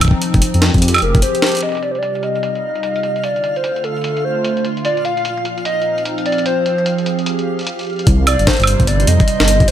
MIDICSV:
0, 0, Header, 1, 6, 480
1, 0, Start_track
1, 0, Key_signature, -3, "minor"
1, 0, Tempo, 402685
1, 19, Time_signature, 4, 2, 24, 8
1, 11578, End_track
2, 0, Start_track
2, 0, Title_t, "Soft synth lead"
2, 0, Program_c, 0, 80
2, 1221, Note_on_c, 0, 70, 83
2, 1443, Note_off_c, 0, 70, 0
2, 1459, Note_on_c, 0, 72, 94
2, 1939, Note_on_c, 0, 75, 98
2, 1957, Note_off_c, 0, 72, 0
2, 2179, Note_on_c, 0, 74, 90
2, 2197, Note_off_c, 0, 75, 0
2, 2279, Note_on_c, 0, 72, 79
2, 2296, Note_off_c, 0, 74, 0
2, 2363, Note_on_c, 0, 74, 97
2, 2381, Note_off_c, 0, 72, 0
2, 2661, Note_on_c, 0, 75, 98
2, 2679, Note_off_c, 0, 74, 0
2, 3861, Note_on_c, 0, 74, 103
2, 3878, Note_off_c, 0, 75, 0
2, 4250, Note_on_c, 0, 72, 91
2, 4268, Note_off_c, 0, 74, 0
2, 4580, Note_on_c, 0, 69, 90
2, 4598, Note_off_c, 0, 72, 0
2, 5059, Note_on_c, 0, 72, 99
2, 5077, Note_off_c, 0, 69, 0
2, 5539, Note_off_c, 0, 72, 0
2, 5782, Note_on_c, 0, 74, 109
2, 6019, Note_on_c, 0, 77, 115
2, 6037, Note_off_c, 0, 74, 0
2, 6499, Note_off_c, 0, 77, 0
2, 6739, Note_on_c, 0, 75, 108
2, 7185, Note_off_c, 0, 75, 0
2, 7460, Note_on_c, 0, 74, 94
2, 7682, Note_off_c, 0, 74, 0
2, 7699, Note_on_c, 0, 72, 100
2, 8611, Note_off_c, 0, 72, 0
2, 9863, Note_on_c, 0, 74, 89
2, 10101, Note_on_c, 0, 72, 91
2, 10119, Note_off_c, 0, 74, 0
2, 10579, Note_on_c, 0, 74, 96
2, 10597, Note_off_c, 0, 72, 0
2, 10819, Note_on_c, 0, 75, 107
2, 10836, Note_off_c, 0, 74, 0
2, 11539, Note_on_c, 0, 72, 106
2, 11557, Note_off_c, 0, 75, 0
2, 11578, Note_off_c, 0, 72, 0
2, 11578, End_track
3, 0, Start_track
3, 0, Title_t, "Synth texture"
3, 0, Program_c, 1, 99
3, 1940, Note_on_c, 1, 77, 77
3, 1941, Note_on_c, 1, 65, 74
3, 9621, Note_on_c, 1, 60, 83
3, 9621, Note_on_c, 1, 72, 80
3, 9631, Note_off_c, 1, 77, 0
3, 9632, Note_off_c, 1, 65, 0
3, 11578, Note_off_c, 1, 60, 0
3, 11578, Note_off_c, 1, 72, 0
3, 11578, End_track
4, 0, Start_track
4, 0, Title_t, "Analog synth pad"
4, 0, Program_c, 2, 89
4, 0, Note_on_c, 2, 53, 82
4, 0, Note_on_c, 2, 60, 93
4, 0, Note_on_c, 2, 63, 93
4, 343, Note_on_c, 2, 67, 99
4, 783, Note_on_c, 2, 68, 83
4, 798, Note_off_c, 2, 63, 0
4, 1938, Note_on_c, 2, 48, 77
4, 1939, Note_off_c, 2, 53, 0
4, 1941, Note_off_c, 2, 68, 0
4, 2093, Note_on_c, 2, 55, 85
4, 2719, Note_off_c, 2, 60, 0
4, 2719, Note_off_c, 2, 67, 0
4, 2825, Note_on_c, 2, 63, 80
4, 3857, Note_on_c, 2, 50, 84
4, 3858, Note_off_c, 2, 48, 0
4, 3858, Note_off_c, 2, 63, 0
4, 3860, Note_off_c, 2, 55, 0
4, 4324, Note_on_c, 2, 57, 75
4, 4428, Note_on_c, 2, 65, 81
4, 4750, Note_on_c, 2, 62, 70
4, 5778, Note_off_c, 2, 50, 0
4, 5778, Note_on_c, 2, 46, 83
4, 5779, Note_off_c, 2, 57, 0
4, 5781, Note_off_c, 2, 62, 0
4, 6241, Note_on_c, 2, 53, 96
4, 6486, Note_on_c, 2, 63, 76
4, 6559, Note_off_c, 2, 65, 0
4, 6664, Note_on_c, 2, 60, 81
4, 7698, Note_off_c, 2, 46, 0
4, 8008, Note_on_c, 2, 68, 82
4, 8208, Note_on_c, 2, 67, 72
4, 8390, Note_off_c, 2, 63, 0
4, 9618, Note_off_c, 2, 53, 0
4, 9618, Note_off_c, 2, 68, 0
4, 9620, Note_on_c, 2, 48, 93
4, 9770, Note_on_c, 2, 55, 74
4, 10281, Note_on_c, 2, 63, 84
4, 10397, Note_off_c, 2, 60, 0
4, 10399, Note_off_c, 2, 67, 0
4, 11538, Note_off_c, 2, 55, 0
4, 11538, Note_off_c, 2, 63, 0
4, 11539, Note_off_c, 2, 48, 0
4, 11539, Note_on_c, 2, 50, 93
4, 11578, Note_off_c, 2, 50, 0
4, 11578, End_track
5, 0, Start_track
5, 0, Title_t, "Detuned saw bass"
5, 0, Program_c, 3, 39
5, 408, Note_on_c, 3, 29, 83
5, 483, Note_off_c, 3, 29, 0
5, 646, Note_on_c, 3, 41, 89
5, 837, Note_off_c, 3, 41, 0
5, 887, Note_on_c, 3, 41, 95
5, 1194, Note_off_c, 3, 41, 0
5, 1219, Note_on_c, 3, 29, 91
5, 1459, Note_off_c, 3, 29, 0
5, 9619, Note_on_c, 3, 36, 99
5, 9967, Note_off_c, 3, 36, 0
5, 10007, Note_on_c, 3, 31, 85
5, 10083, Note_off_c, 3, 31, 0
5, 10246, Note_on_c, 3, 31, 94
5, 10436, Note_off_c, 3, 31, 0
5, 10487, Note_on_c, 3, 31, 95
5, 10794, Note_off_c, 3, 31, 0
5, 10819, Note_on_c, 3, 41, 90
5, 10942, Note_off_c, 3, 41, 0
5, 11207, Note_on_c, 3, 31, 91
5, 11514, Note_off_c, 3, 31, 0
5, 11578, End_track
6, 0, Start_track
6, 0, Title_t, "Drums"
6, 16, Note_on_c, 9, 42, 90
6, 16, Note_on_c, 9, 76, 55
6, 19, Note_on_c, 9, 36, 49
6, 56, Note_off_c, 9, 36, 0
6, 56, Note_on_c, 9, 36, 63
6, 93, Note_off_c, 9, 36, 0
6, 93, Note_on_c, 9, 36, 76
6, 131, Note_off_c, 9, 36, 0
6, 131, Note_on_c, 9, 36, 92
6, 135, Note_off_c, 9, 42, 0
6, 135, Note_off_c, 9, 76, 0
6, 250, Note_off_c, 9, 36, 0
6, 257, Note_on_c, 9, 42, 68
6, 376, Note_off_c, 9, 42, 0
6, 406, Note_on_c, 9, 42, 40
6, 408, Note_on_c, 9, 36, 99
6, 497, Note_off_c, 9, 42, 0
6, 497, Note_on_c, 9, 42, 90
6, 527, Note_off_c, 9, 36, 0
6, 617, Note_off_c, 9, 42, 0
6, 645, Note_on_c, 9, 42, 39
6, 737, Note_off_c, 9, 42, 0
6, 737, Note_on_c, 9, 38, 113
6, 737, Note_on_c, 9, 42, 64
6, 856, Note_off_c, 9, 38, 0
6, 856, Note_off_c, 9, 42, 0
6, 886, Note_on_c, 9, 42, 38
6, 888, Note_on_c, 9, 36, 97
6, 932, Note_off_c, 9, 42, 0
6, 932, Note_on_c, 9, 42, 32
6, 977, Note_off_c, 9, 42, 0
6, 977, Note_on_c, 9, 42, 88
6, 1007, Note_off_c, 9, 36, 0
6, 1051, Note_off_c, 9, 42, 0
6, 1051, Note_on_c, 9, 42, 72
6, 1126, Note_off_c, 9, 42, 0
6, 1126, Note_on_c, 9, 42, 59
6, 1126, Note_on_c, 9, 76, 61
6, 1149, Note_off_c, 9, 76, 0
6, 1149, Note_on_c, 9, 76, 50
6, 1171, Note_off_c, 9, 42, 0
6, 1171, Note_off_c, 9, 76, 0
6, 1171, Note_on_c, 9, 42, 48
6, 1171, Note_on_c, 9, 76, 42
6, 1195, Note_off_c, 9, 76, 0
6, 1195, Note_on_c, 9, 76, 33
6, 1217, Note_off_c, 9, 42, 0
6, 1217, Note_on_c, 9, 42, 37
6, 1314, Note_off_c, 9, 76, 0
6, 1336, Note_off_c, 9, 42, 0
6, 1367, Note_on_c, 9, 42, 40
6, 1368, Note_on_c, 9, 36, 110
6, 1456, Note_off_c, 9, 42, 0
6, 1456, Note_on_c, 9, 42, 94
6, 1487, Note_off_c, 9, 36, 0
6, 1575, Note_off_c, 9, 42, 0
6, 1605, Note_on_c, 9, 42, 36
6, 1697, Note_off_c, 9, 42, 0
6, 1697, Note_on_c, 9, 38, 111
6, 1697, Note_on_c, 9, 42, 51
6, 1746, Note_off_c, 9, 42, 0
6, 1746, Note_on_c, 9, 42, 41
6, 1770, Note_off_c, 9, 42, 0
6, 1770, Note_on_c, 9, 42, 28
6, 1776, Note_off_c, 9, 42, 0
6, 1776, Note_on_c, 9, 42, 35
6, 1808, Note_off_c, 9, 42, 0
6, 1808, Note_on_c, 9, 42, 36
6, 1816, Note_off_c, 9, 38, 0
6, 1847, Note_off_c, 9, 42, 0
6, 1847, Note_on_c, 9, 42, 45
6, 1869, Note_off_c, 9, 42, 0
6, 1869, Note_on_c, 9, 42, 53
6, 1891, Note_off_c, 9, 42, 0
6, 1891, Note_on_c, 9, 42, 38
6, 1914, Note_off_c, 9, 42, 0
6, 1914, Note_on_c, 9, 42, 43
6, 1937, Note_off_c, 9, 42, 0
6, 1937, Note_on_c, 9, 42, 83
6, 1973, Note_off_c, 9, 42, 0
6, 1973, Note_on_c, 9, 42, 46
6, 2012, Note_off_c, 9, 42, 0
6, 2012, Note_on_c, 9, 42, 52
6, 2050, Note_off_c, 9, 42, 0
6, 2050, Note_on_c, 9, 42, 56
6, 2086, Note_off_c, 9, 42, 0
6, 2086, Note_on_c, 9, 42, 61
6, 2109, Note_off_c, 9, 42, 0
6, 2109, Note_on_c, 9, 42, 63
6, 2176, Note_off_c, 9, 42, 0
6, 2176, Note_on_c, 9, 42, 60
6, 2296, Note_off_c, 9, 42, 0
6, 2325, Note_on_c, 9, 42, 35
6, 2415, Note_off_c, 9, 42, 0
6, 2415, Note_on_c, 9, 42, 82
6, 2535, Note_off_c, 9, 42, 0
6, 2565, Note_on_c, 9, 42, 37
6, 2656, Note_off_c, 9, 42, 0
6, 2656, Note_on_c, 9, 42, 59
6, 2776, Note_off_c, 9, 42, 0
6, 2806, Note_on_c, 9, 42, 37
6, 2897, Note_off_c, 9, 42, 0
6, 2897, Note_on_c, 9, 42, 84
6, 3016, Note_off_c, 9, 42, 0
6, 3044, Note_on_c, 9, 42, 37
6, 3164, Note_off_c, 9, 42, 0
6, 3284, Note_on_c, 9, 42, 35
6, 3375, Note_off_c, 9, 42, 0
6, 3375, Note_on_c, 9, 42, 83
6, 3494, Note_off_c, 9, 42, 0
6, 3524, Note_on_c, 9, 42, 35
6, 3616, Note_off_c, 9, 42, 0
6, 3616, Note_on_c, 9, 42, 59
6, 3735, Note_off_c, 9, 42, 0
6, 3765, Note_on_c, 9, 42, 38
6, 3857, Note_off_c, 9, 42, 0
6, 3857, Note_on_c, 9, 42, 87
6, 3976, Note_off_c, 9, 42, 0
6, 4006, Note_on_c, 9, 42, 34
6, 4097, Note_off_c, 9, 42, 0
6, 4097, Note_on_c, 9, 42, 59
6, 4217, Note_off_c, 9, 42, 0
6, 4247, Note_on_c, 9, 42, 38
6, 4337, Note_off_c, 9, 42, 0
6, 4337, Note_on_c, 9, 42, 84
6, 4457, Note_off_c, 9, 42, 0
6, 4485, Note_on_c, 9, 42, 37
6, 4577, Note_off_c, 9, 42, 0
6, 4577, Note_on_c, 9, 42, 62
6, 4696, Note_off_c, 9, 42, 0
6, 4726, Note_on_c, 9, 42, 17
6, 4786, Note_off_c, 9, 42, 0
6, 4786, Note_on_c, 9, 42, 22
6, 4816, Note_off_c, 9, 42, 0
6, 4816, Note_on_c, 9, 42, 86
6, 4867, Note_off_c, 9, 42, 0
6, 4867, Note_on_c, 9, 42, 30
6, 4967, Note_off_c, 9, 42, 0
6, 4967, Note_on_c, 9, 42, 38
6, 5086, Note_off_c, 9, 42, 0
6, 5298, Note_on_c, 9, 42, 86
6, 5418, Note_off_c, 9, 42, 0
6, 5446, Note_on_c, 9, 42, 36
6, 5538, Note_off_c, 9, 42, 0
6, 5538, Note_on_c, 9, 42, 59
6, 5657, Note_off_c, 9, 42, 0
6, 5687, Note_on_c, 9, 42, 38
6, 5778, Note_off_c, 9, 42, 0
6, 5778, Note_on_c, 9, 42, 88
6, 5897, Note_off_c, 9, 42, 0
6, 5927, Note_on_c, 9, 42, 35
6, 6017, Note_off_c, 9, 42, 0
6, 6017, Note_on_c, 9, 42, 61
6, 6136, Note_off_c, 9, 42, 0
6, 6165, Note_on_c, 9, 42, 36
6, 6257, Note_off_c, 9, 42, 0
6, 6257, Note_on_c, 9, 42, 85
6, 6376, Note_off_c, 9, 42, 0
6, 6407, Note_on_c, 9, 42, 37
6, 6497, Note_off_c, 9, 42, 0
6, 6497, Note_on_c, 9, 42, 60
6, 6617, Note_off_c, 9, 42, 0
6, 6647, Note_on_c, 9, 42, 37
6, 6738, Note_off_c, 9, 42, 0
6, 6738, Note_on_c, 9, 42, 84
6, 6857, Note_off_c, 9, 42, 0
6, 6933, Note_on_c, 9, 42, 36
6, 7052, Note_off_c, 9, 42, 0
6, 7128, Note_on_c, 9, 42, 37
6, 7217, Note_off_c, 9, 42, 0
6, 7217, Note_on_c, 9, 42, 84
6, 7336, Note_off_c, 9, 42, 0
6, 7367, Note_on_c, 9, 42, 36
6, 7458, Note_off_c, 9, 42, 0
6, 7458, Note_on_c, 9, 42, 57
6, 7538, Note_off_c, 9, 42, 0
6, 7538, Note_on_c, 9, 42, 49
6, 7607, Note_off_c, 9, 42, 0
6, 7607, Note_on_c, 9, 42, 36
6, 7618, Note_off_c, 9, 42, 0
6, 7618, Note_on_c, 9, 42, 40
6, 7696, Note_off_c, 9, 42, 0
6, 7696, Note_on_c, 9, 42, 83
6, 7816, Note_off_c, 9, 42, 0
6, 7936, Note_on_c, 9, 42, 58
6, 8056, Note_off_c, 9, 42, 0
6, 8085, Note_on_c, 9, 42, 37
6, 8176, Note_off_c, 9, 42, 0
6, 8176, Note_on_c, 9, 42, 83
6, 8295, Note_off_c, 9, 42, 0
6, 8326, Note_on_c, 9, 42, 35
6, 8418, Note_off_c, 9, 42, 0
6, 8418, Note_on_c, 9, 42, 58
6, 8537, Note_off_c, 9, 42, 0
6, 8567, Note_on_c, 9, 42, 36
6, 8658, Note_off_c, 9, 42, 0
6, 8658, Note_on_c, 9, 42, 85
6, 8777, Note_off_c, 9, 42, 0
6, 8807, Note_on_c, 9, 42, 37
6, 8926, Note_off_c, 9, 42, 0
6, 9047, Note_on_c, 9, 42, 35
6, 9070, Note_off_c, 9, 42, 0
6, 9070, Note_on_c, 9, 42, 29
6, 9092, Note_off_c, 9, 42, 0
6, 9092, Note_on_c, 9, 42, 23
6, 9115, Note_off_c, 9, 42, 0
6, 9115, Note_on_c, 9, 42, 18
6, 9138, Note_off_c, 9, 42, 0
6, 9138, Note_on_c, 9, 42, 87
6, 9175, Note_off_c, 9, 42, 0
6, 9175, Note_on_c, 9, 42, 13
6, 9213, Note_off_c, 9, 42, 0
6, 9213, Note_on_c, 9, 42, 10
6, 9250, Note_off_c, 9, 42, 0
6, 9250, Note_on_c, 9, 42, 8
6, 9287, Note_off_c, 9, 42, 0
6, 9287, Note_on_c, 9, 42, 33
6, 9310, Note_off_c, 9, 42, 0
6, 9310, Note_on_c, 9, 42, 27
6, 9333, Note_off_c, 9, 42, 0
6, 9333, Note_on_c, 9, 42, 22
6, 9355, Note_off_c, 9, 42, 0
6, 9355, Note_on_c, 9, 42, 18
6, 9377, Note_off_c, 9, 42, 0
6, 9377, Note_on_c, 9, 42, 15
6, 9413, Note_off_c, 9, 42, 0
6, 9413, Note_on_c, 9, 42, 12
6, 9451, Note_off_c, 9, 42, 0
6, 9451, Note_on_c, 9, 42, 10
6, 9490, Note_off_c, 9, 42, 0
6, 9490, Note_on_c, 9, 42, 8
6, 9526, Note_off_c, 9, 42, 0
6, 9526, Note_on_c, 9, 42, 36
6, 9616, Note_off_c, 9, 42, 0
6, 9616, Note_on_c, 9, 42, 70
6, 9619, Note_on_c, 9, 36, 105
6, 9736, Note_off_c, 9, 42, 0
6, 9738, Note_off_c, 9, 36, 0
6, 9856, Note_on_c, 9, 42, 93
6, 9856, Note_on_c, 9, 76, 79
6, 9976, Note_off_c, 9, 42, 0
6, 9976, Note_off_c, 9, 76, 0
6, 10005, Note_on_c, 9, 42, 41
6, 10097, Note_off_c, 9, 42, 0
6, 10097, Note_on_c, 9, 38, 120
6, 10097, Note_on_c, 9, 42, 66
6, 10098, Note_on_c, 9, 36, 110
6, 10134, Note_off_c, 9, 42, 0
6, 10134, Note_on_c, 9, 42, 54
6, 10172, Note_off_c, 9, 42, 0
6, 10172, Note_on_c, 9, 42, 41
6, 10211, Note_off_c, 9, 42, 0
6, 10211, Note_on_c, 9, 42, 36
6, 10216, Note_off_c, 9, 38, 0
6, 10218, Note_off_c, 9, 36, 0
6, 10248, Note_off_c, 9, 42, 0
6, 10248, Note_on_c, 9, 42, 41
6, 10271, Note_off_c, 9, 42, 0
6, 10271, Note_on_c, 9, 42, 24
6, 10293, Note_off_c, 9, 42, 0
6, 10293, Note_on_c, 9, 42, 20
6, 10293, Note_on_c, 9, 76, 81
6, 10316, Note_off_c, 9, 42, 0
6, 10316, Note_on_c, 9, 42, 16
6, 10338, Note_off_c, 9, 42, 0
6, 10338, Note_on_c, 9, 42, 93
6, 10413, Note_off_c, 9, 76, 0
6, 10458, Note_off_c, 9, 42, 0
6, 10486, Note_on_c, 9, 42, 41
6, 10487, Note_on_c, 9, 36, 105
6, 10578, Note_off_c, 9, 42, 0
6, 10578, Note_on_c, 9, 42, 72
6, 10607, Note_off_c, 9, 36, 0
6, 10697, Note_off_c, 9, 42, 0
6, 10726, Note_on_c, 9, 42, 40
6, 10816, Note_off_c, 9, 42, 0
6, 10816, Note_on_c, 9, 42, 93
6, 10935, Note_off_c, 9, 42, 0
6, 10966, Note_on_c, 9, 42, 41
6, 10967, Note_on_c, 9, 36, 101
6, 11058, Note_off_c, 9, 42, 0
6, 11058, Note_on_c, 9, 42, 67
6, 11086, Note_off_c, 9, 36, 0
6, 11177, Note_off_c, 9, 42, 0
6, 11206, Note_on_c, 9, 38, 115
6, 11206, Note_on_c, 9, 42, 39
6, 11297, Note_off_c, 9, 42, 0
6, 11297, Note_on_c, 9, 42, 95
6, 11325, Note_off_c, 9, 38, 0
6, 11416, Note_off_c, 9, 42, 0
6, 11447, Note_on_c, 9, 36, 116
6, 11447, Note_on_c, 9, 42, 42
6, 11538, Note_off_c, 9, 42, 0
6, 11538, Note_on_c, 9, 42, 72
6, 11566, Note_off_c, 9, 36, 0
6, 11578, Note_off_c, 9, 42, 0
6, 11578, End_track
0, 0, End_of_file